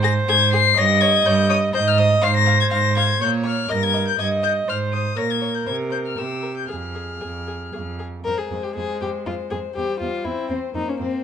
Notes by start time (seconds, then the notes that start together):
Already playing: G#2 C5
0.03 G#4 A#6
0.28 G#2 G#4 G#6
0.53 G#4 C7
0.77 G2 C#5 D#5 A#6
1.00 C#5 G#6
1.26 G2 C#5 G6
1.49 C#5 D#6
1.73 G#2 C5 D#5 G6
1.88 F6
1.98 C5 D#6
2.22 G#2 C5 F5 C7
2.37 A#6
2.46 F5
2.61 G#6
2.70 G#2 F5 A#6
2.96 F5 G#6
3.21 A#2 C#5 G6
3.43 C#5 F6
3.69 G2 A#4 D#5 A#6
3.83 G#6
3.94 D#5
4.07 G6
4.19 G2 D#5 G#6
4.43 D#5 G6
4.68 G#2 C5 F6
4.93 C5 D#6
5.17 A#2 A#4 C#5 A#6
5.30 G#6
5.41 C#5
5.55 G6
5.66 C3 C5 G#6
5.90 C5 G6
6.06 F6
6.16 C3 G4 A#4 E6
6.42 A#4
6.57 G6
6.68 F2 G#4 F6
6.95 G#4
7.21 F2 G#4
7.47 G#4
7.73 F2 G#4
7.99 G#4
8.24 F2 G#3 A#4 C5
8.38 G#4
8.51 F2 C5
8.63 G4
8.76 F2 G#4 C5
9.01 F2 G4 C5
9.25 F2 F4 C5
9.50 F2 G#4 C5
9.75 E2 G3 G4 C5
10.00 E2 F4 C5
10.25 E2 C4 E4 C5
10.50 E2 C4 C5
10.74 F2 A#3 D#4 C5
10.89 C#4
11.00 F2 C4 C5